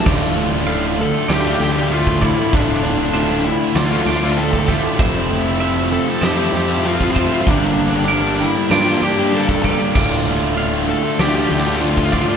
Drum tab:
CC |x---------------|----------------|----------------|----------------|
HH |----o---o---o---|o---o---o---o---|o---o---o---o---|o---o---o---o---|
SD |--------o-------|-----o--o-------|--------o-------|-----o--o-------|
BD |o------------oo-|o------------oo-|o------------oo-|o------------oo-|

CC |x---------------|
HH |----o---o---o---|
SD |--------o-------|
BD |o------------oo-|